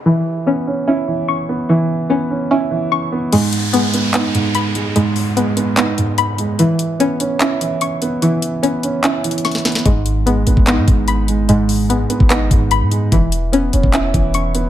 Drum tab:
CC |------------------------------------------------|------------------------------------------------|x-----------------------------------------------|------------------------------------------------|
HH |------------------------------------------------|------------------------------------------------|x-----x-----x-----x-----x-----x-----x-----x-----|x-----o-----x-----x-----x-----x-----x-----x-----|
CP |------------------------------------------------|------------------------------------------------|------------------------x-----------------------|------------------------x-----------------------|
SD |------------------------------------------------|------------------------------------------------|------------------------------------------------|------------------------------------------------|
BD |------------------------------------------------|------------------------------------------------|------------------------------------------------|------------------------------------------------|

CC |------------------------------------------------|------------------------------------------------|------------------------------------------------|------------------------------------------------|
HH |x-----x-----x-----x-----x-----x-----x-----x-----|x-----x-----x-----x-----x-----x-x-x-x-x-x-x-x-x-|x-----x-----x-----x-----x-----x-----x-----x-----|x-----o-----x-----x-----x-----x-----x-----x-----|
CP |------------------------x-----------------------|------------------------x-----------------------|------------------------x-----------------------|------------------------x-----------------------|
SD |------------------------------------------------|------------------------------------o--o--o--o--|------------------------------------------------|------------------------------------------------|
BD |------------------------------------------------|------------------------------------------------|o--------------------o--------o-----------------|---------------------o--------o-----------------|

CC |------------------------------------------------|
HH |x-----x-----x-----x-----x-----x-----x-----x-----|
CP |------------------------x-----------------------|
SD |------------------------------------------------|
BD |o--------------------o--------o-----------------|